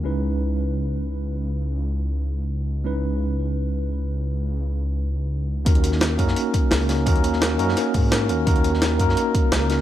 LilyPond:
<<
  \new Staff \with { instrumentName = "Tine electric piano" } { \time 4/4 \key ees \phrygian \tempo 4 = 171 <aes des' ees' fes' ces''>1~ | <aes des' ees' fes' ces''>1 | <aes des' ees' fes' ces''>1~ | <aes des' ees' fes' ces''>1 |
<bes des' ees' ges' bes'>4. <bes des' ees' ges' bes'>2 <bes des' ees' ges' bes'>8 | <bes des' ees' ges' bes'>4. <bes des' ees' ges' bes'>2 <bes des' ees' ges' bes'>8 | <bes des' ees' ges' bes'>4. <bes des' ees' ges' bes'>2 <bes des' ees' ges' bes'>8 | }
  \new Staff \with { instrumentName = "Detuned saw bass" } { \clef bass \time 4/4 \key ees \phrygian des,1~ | des,1~ | des,1~ | des,1 |
ees,4. ges,8 r4 des,4 | ees,4. ges,8 r8 aes,4 ees,8 | ees,4. ges,8 r4 des,4 | }
  \new DrumStaff \with { instrumentName = "Drums" } \drummode { \time 4/4 r4 r4 r4 r4 | r4 r4 r4 r4 | r4 r4 r4 r4 | r4 r4 r4 r4 |
<hh bd>16 hh16 hh16 sn16 <hh sn>8 <hh bd>16 sn16 hh8 <hh bd>8 <hh sn>16 hh16 <hh sn>8 | <hh bd>16 hh16 hh16 sn16 <hh sn>8 hh16 sn16 <hh sn>8 <hh hho bd>8 <hh sn>8 hh8 | <hh bd>16 hh16 hh16 sn16 <hh sn>8 <hh bd>16 sn16 hh8 <hh bd>8 <hh sn>8 <hh sn>8 | }
>>